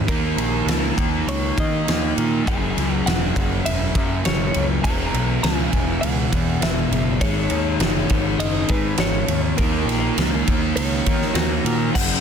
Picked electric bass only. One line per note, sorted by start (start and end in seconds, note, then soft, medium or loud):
0.08 0.32 D#2 medium
0.36 0.61 A#1 medium
0.65 0.90 C#2 medium
0.97 1.21 D#2 medium
1.27 1.51 C#2 medium
1.58 1.81 D#3 medium
1.88 2.11 D#2 medium
2.17 2.41 A#2 medium
2.48 2.71 F#1 medium
2.77 3.00 C#2 medium
3.06 3.30 E1 medium
3.36 3.60 F#1 medium
3.66 3.90 E1 medium
3.95 4.19 F#2 medium
4.25 4.49 F#1 medium
4.56 4.79 C#2 medium
4.84 5.08 E1 medium
5.14 5.38 B1 medium
5.43 5.67 C#2 medium
5.73 5.97 E1 medium
6.03 6.27 C#2 medium
6.32 6.56 E2 medium
6.60 6.85 E1 loud
6.90 7.22 F#1 medium
7.22 7.45 G#1 medium
7.51 7.75 D#2 medium
7.79 8.04 F#1 medium
8.10 8.34 G#1 medium
8.38 8.63 F#1 medium
8.70 8.93 G#2 medium
8.97 9.22 G#1 medium
9.28 9.52 D#2 medium
9.59 9.83 D#2 medium
9.85 10.10 A#1 medium
10.17 10.41 C#2 medium
10.48 10.72 D#2 medium
10.76 11.00 C#2 medium
11.06 11.30 D#3 medium
11.34 11.59 D#2 medium
11.64 11.89 A#2 medium
11.96 12.14 F#1 medium